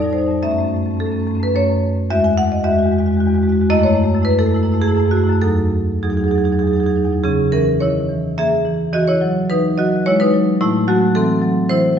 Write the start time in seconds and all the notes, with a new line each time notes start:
Already playing: F2 D5
0.02 F2 G3 D#4
0.10 G3 D#4 C5
0.16 F2 D#4
0.21 G3
0.26 F2 D#4
0.31 G3
0.43 F#2 A3 C#4 E5
0.50 F#2 A3 C#4
0.58 A3 C#4
0.64 F#2 A3
0.68 C#4
0.74 F#2 A3 C#4
0.83 F#2 A3 C#4
0.91 A3 C#4
0.97 F#2 A3 A4
1.02 A3 C#4
1.07 F#2
1.12 A3 C#4
1.16 F#2 C#4
1.23 F#2 A3
1.27 A3 C#4
1.35 F#2 C#4
1.40 A3 B4
1.44 F#2 C#4
1.48 A3
1.56 F#2 A3 C#4 C#5
2.10 E2 G#3 F#4 E5
2.24 G#5
2.38 F#5
2.52 D#5
2.64 E2 G#3 F#4 E5
2.71 E2 G#3 F#4
2.78 F#4
2.83 E2 G#3 F#4
2.92 G#3 F#4
2.97 E2 G#3 F#4
3.06 E2 G#3 F#4
3.13 G#3 F#4
3.18 E2 F#4
3.26 E2 G#3 F#4
3.34 E2 G#3 F#4
3.42 G#3 F#4
3.48 E2 F#4
3.52 G#3 F#4
3.59 E2 G#3 F#4
3.70 F#2 A3 E4 D#5
3.77 A3 E4
3.81 F#2 C#5
3.86 A3 E4
3.94 F#2 A3 E4
4.04 F#2 A3 E4
4.13 F#2 A3 E4
4.22 A3 E4 B4
4.27 F#2 A3 E4
4.38 F#2 A3 E4 A4
4.46 A3 E4
4.50 F#2 E4
4.56 A3
4.63 F#2 A3 E4
4.72 F#2 A3 E4
4.80 A3 E4 G#4
4.84 F#2 E4
4.91 F#2 A3
4.97 A3 E4
5.05 F#2 A3 E4
5.11 E4 F#4
5.17 F#2 A3
5.24 A3 E4
5.29 F#2 E4
5.42 E2 F#3 D#4 A4
6.03 E2 F#3 D#4 G#4
6.10 E2 F#3 D#4 G#4
6.17 F#3 D#4 G#4
6.22 E2 G#4
6.27 F#3 D#4
6.31 E2 F#3 G#4
6.35 D#4 G#4
6.44 E2 F#3 D#4 G#4
6.52 E2 F#3 D#4 G#4
6.59 E2 F#3 D#4 G#4
6.67 F#3 D#4 G#4
6.73 E2 D#4 G#4
6.80 F#3 D#4 G#4
6.84 E2 F#3 G#4
6.90 D#4
6.95 E2 F#3 D#4
7.05 E2 F#3 D#4
7.12 F#3 D#4
7.24 C#3 C#4 G#4
7.52 E3 C#4 A#4
7.80 D#3 E4 C#5
8.09 E3
8.38 A#3 G#4 E5
8.65 E3
8.93 E3 F#4 D#5
9.08 E4 C#5
9.21 F#3
9.50 E3 D#4 B4
9.78 F#3 F#4 D#5
10.06 G#3 E4 C#5
10.20 D#4 B4
10.33 F#3
10.61 A2 A3 E4
10.88 F#3 A3 F#4
11.15 E3 C4 A4
11.42 F#3
11.69 E3 E4 C5